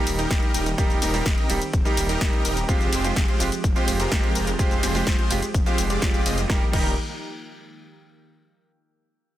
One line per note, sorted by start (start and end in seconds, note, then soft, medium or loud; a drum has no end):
0.00 2.65 D#3 medium
0.00 0.28 G3 medium
0.00 0.28 A#3 medium
0.00 0.76 A#3 medium
0.00 0.28 D#4 medium
0.00 0.28 G4 loud
0.00 6.46 G4 loud
0.07 0.26 D#1 medium
0.07 open hi-hat loud
0.07 ride medium
0.07 shaker medium
0.19 0.52 D#4 loud
0.19 0.52 G4 medium
0.19 0.52 A#4 loud
0.19 closed hi-hat medium
0.19 shaker soft
0.30 0.40 D#1 loud
0.30 0.75 G3 medium
0.30 0.75 A#3 medium
0.30 0.76 D#4 medium
0.30 0.76 G4 medium
0.30 kick loud
0.30 snare loud
0.30 closed hi-hat medium
0.30 shaker soft
0.43 closed hi-hat soft
0.54 0.74 D#1 medium
0.54 0.68 D#4 medium
0.54 0.68 G4 medium
0.54 0.68 A#4 loud
0.54 open hi-hat loud
0.54 ride medium
0.54 shaker medium
0.66 closed hi-hat medium
0.66 shaker soft
0.78 0.98 D#1 loud
0.78 1.11 G3 loud
0.78 1.11 A#3 medium
0.78 2.67 C4 medium
0.78 0.99 D#4 medium
0.78 1.11 D#4 medium
0.78 0.99 G4 medium
0.78 1.11 G4 loud
0.78 0.99 A#4 medium
0.78 kick loud
0.78 closed hi-hat medium
0.78 shaker soft
0.90 closed hi-hat soft
0.90 shaker soft
1.02 1.21 D#1 medium
1.02 1.35 D#4 medium
1.02 1.35 G4 medium
1.02 1.35 A#4 loud
1.02 snare medium
1.02 open hi-hat loud
1.02 ride medium
1.02 shaker medium
1.13 1.21 G3 loud
1.13 1.22 A#3 medium
1.13 1.22 D#4 medium
1.13 1.22 G4 loud
1.13 open hi-hat medium
1.13 shaker soft
1.26 1.36 D#1 medium
1.26 kick loud
1.26 snare loud
1.26 closed hi-hat medium
1.26 shaker soft
1.38 1.51 D#4 medium
1.38 1.51 G4 medium
1.38 1.51 A#4 medium
1.38 closed hi-hat soft
1.49 1.59 D#1 loud
1.49 1.57 G3 loud
1.49 1.57 A#3 medium
1.49 1.57 D#4 medium
1.49 1.58 G4 loud
1.49 open hi-hat loud
1.49 ride medium
1.49 shaker medium
1.62 closed hi-hat medium
1.62 shaker soft
1.73 1.83 D#1 loud
1.73 kick loud
1.73 closed hi-hat medium
1.73 shaker soft
1.85 2.18 G3 medium
1.85 2.18 A#3 medium
1.85 1.99 D#4 loud
1.85 2.18 D#4 medium
1.85 1.99 G4 medium
1.85 2.19 G4 loud
1.85 1.99 A#4 loud
1.85 closed hi-hat soft
1.85 shaker soft
1.97 2.17 D#1 medium
1.97 open hi-hat loud
1.97 ride medium
1.97 shaker medium
2.09 2.42 D#4 loud
2.09 2.42 G4 medium
2.09 2.42 A#4 loud
2.09 closed hi-hat medium
2.09 shaker soft
2.21 2.31 D#1 loud
2.21 2.66 G3 medium
2.21 2.66 A#3 medium
2.21 2.66 D#4 medium
2.21 2.66 G4 medium
2.21 kick loud
2.21 snare loud
2.21 closed hi-hat medium
2.21 shaker soft
2.33 closed hi-hat soft
2.45 2.64 D#1 medium
2.45 2.58 D#4 medium
2.45 2.58 G4 medium
2.45 2.58 A#4 loud
2.45 open hi-hat loud
2.45 ride medium
2.45 shaker medium
2.57 closed hi-hat medium
2.57 shaker soft
2.68 2.88 F1 loud
2.68 6.46 F3 medium
2.68 3.01 G#3 loud
2.68 2.90 G#3 medium
2.68 6.46 G#3 medium
2.68 3.02 C4 medium
2.68 2.90 C4 medium
2.68 2.90 F4 medium
2.68 3.02 F4 medium
2.68 2.90 G4 medium
2.68 3.02 G4 loud
2.68 2.90 C5 medium
2.68 kick loud
2.68 closed hi-hat medium
2.68 shaker soft
2.81 closed hi-hat soft
2.81 shaker soft
2.92 3.12 F1 medium
2.92 3.25 G#3 medium
2.92 3.25 C4 medium
2.92 3.25 F4 medium
2.92 3.25 G4 medium
2.92 3.25 C5 loud
2.92 open hi-hat loud
2.92 ride medium
2.92 shaker medium
3.04 3.12 G#3 loud
3.04 3.12 C4 medium
3.04 3.12 F4 medium
3.04 3.12 G4 loud
3.04 closed hi-hat medium
3.04 shaker soft
3.16 3.26 F1 medium
3.16 kick loud
3.16 snare loud
3.16 closed hi-hat medium
3.16 shaker soft
3.28 3.41 G#3 medium
3.28 3.41 C4 medium
3.28 3.41 F4 medium
3.28 3.41 G4 medium
3.28 3.41 C5 medium
3.28 closed hi-hat soft
3.40 3.50 F1 loud
3.40 3.48 G#3 loud
3.40 3.48 C4 medium
3.40 3.48 F4 medium
3.40 3.48 G4 loud
3.40 open hi-hat loud
3.40 ride medium
3.40 shaker medium
3.52 closed hi-hat medium
3.52 shaker soft
3.64 3.74 F1 loud
3.64 kick loud
3.64 closed hi-hat medium
3.64 shaker soft
3.75 4.08 G#3 medium
3.75 3.89 G#3 loud
3.75 4.09 C4 medium
3.75 3.89 C4 medium
3.75 3.89 F4 medium
3.75 4.09 F4 medium
3.75 3.89 G4 medium
3.75 4.09 G4 loud
3.75 3.89 C5 loud
3.75 closed hi-hat soft
3.75 shaker soft
3.88 4.07 F1 medium
3.88 open hi-hat loud
3.88 ride medium
3.88 shaker medium
4.00 4.33 G#3 loud
4.00 4.33 C4 medium
4.00 4.33 F4 medium
4.00 4.33 G4 medium
4.00 4.33 A#4 loud
4.00 closed hi-hat medium
4.00 shaker soft
4.11 4.21 F1 loud
4.11 4.56 G#3 medium
4.11 4.56 C4 medium
4.11 4.57 F4 medium
4.11 4.57 G4 medium
4.11 kick loud
4.11 snare loud
4.11 closed hi-hat medium
4.11 shaker soft
4.24 closed hi-hat soft
4.35 4.55 F1 medium
4.35 4.49 G#3 medium
4.35 4.49 C4 medium
4.35 4.49 F4 medium
4.35 4.49 G4 medium
4.35 4.49 A#4 loud
4.35 open hi-hat loud
4.35 ride medium
4.35 shaker medium
4.47 closed hi-hat medium
4.47 shaker soft
4.59 4.79 F1 loud
4.59 4.92 G#3 loud
4.59 4.80 G#3 medium
4.59 4.92 C4 medium
4.59 4.80 C4 medium
4.59 4.80 F4 medium
4.59 4.92 F4 medium
4.59 4.80 G4 medium
4.59 4.92 G4 loud
4.59 4.80 C5 medium
4.59 kick loud
4.59 closed hi-hat medium
4.59 shaker soft
4.71 closed hi-hat soft
4.71 shaker soft
4.83 5.02 F1 medium
4.83 5.16 G#3 medium
4.83 5.16 C4 medium
4.83 5.16 F4 medium
4.83 5.16 G4 medium
4.83 5.16 C5 loud
4.83 snare medium
4.83 open hi-hat loud
4.83 ride medium
4.83 shaker medium
4.94 5.02 G#3 loud
4.94 5.03 C4 medium
4.94 5.03 F4 medium
4.94 5.03 G4 loud
4.94 open hi-hat medium
4.94 shaker soft
5.07 5.17 F1 medium
5.07 kick loud
5.07 snare loud
5.07 closed hi-hat medium
5.07 shaker soft
5.19 5.32 G#3 medium
5.19 5.32 C4 medium
5.19 5.32 F4 medium
5.19 5.32 G4 medium
5.19 5.32 C5 medium
5.19 closed hi-hat soft
5.30 5.40 F1 loud
5.30 5.38 G#3 loud
5.30 5.38 C4 medium
5.30 5.38 F4 medium
5.30 5.39 G4 loud
5.30 open hi-hat loud
5.30 ride medium
5.30 shaker medium
5.42 closed hi-hat medium
5.42 shaker soft
5.54 5.64 F1 loud
5.54 kick loud
5.54 closed hi-hat medium
5.54 shaker soft
5.66 5.99 G#3 medium
5.66 5.80 G#3 loud
5.66 5.99 C4 medium
5.66 5.80 C4 medium
5.66 5.80 F4 medium
5.66 5.99 F4 medium
5.66 5.80 G4 medium
5.66 6.00 G4 loud
5.66 5.80 C5 loud
5.66 closed hi-hat soft
5.66 shaker soft
5.78 5.98 F1 medium
5.78 open hi-hat loud
5.78 ride medium
5.78 shaker medium
5.90 6.10 G#3 medium
5.90 6.10 C4 medium
5.90 6.10 F4 medium
5.90 6.10 G4 medium
5.90 6.10 D5 loud
5.90 closed hi-hat medium
5.90 shaker soft
6.02 6.21 F1 medium
6.02 6.47 G#3 medium
6.02 6.47 C4 medium
6.02 6.47 F4 medium
6.02 6.47 G4 medium
6.02 kick loud
6.02 snare loud
6.02 closed hi-hat medium
6.02 shaker soft
6.14 6.23 G#3 loud
6.14 6.23 C4 medium
6.14 6.23 F4 medium
6.14 6.23 G4 medium
6.14 6.23 D5 loud
6.14 closed hi-hat soft
6.14 shaker soft
6.26 6.45 F1 medium
6.26 6.39 G#3 medium
6.26 6.39 C4 medium
6.26 6.39 F4 medium
6.26 6.39 G4 medium
6.26 6.39 D#5 medium
6.26 open hi-hat loud
6.26 ride medium
6.26 shaker medium
6.38 closed hi-hat medium
6.38 shaker soft
6.48 6.63 D#1 loud
6.48 6.72 D#3 medium
6.48 6.62 G3 medium
6.48 6.63 A#3 medium
6.48 6.72 A#3 medium
6.48 6.63 D#4 medium
6.48 6.72 G4 medium
6.48 6.63 G4 medium
6.48 6.64 G4 medium
6.48 6.63 A#4 medium
6.48 kick loud
6.48 snare medium
6.72 6.96 D#1 loud
6.72 6.90 G3 medium
6.72 6.91 A#3 medium
6.72 6.91 D#4 medium
6.72 6.92 D#4 medium
6.72 6.91 G4 medium
6.72 6.92 G4 loud
6.72 6.91 A#4 loud
6.72 kick loud
6.72 crash medium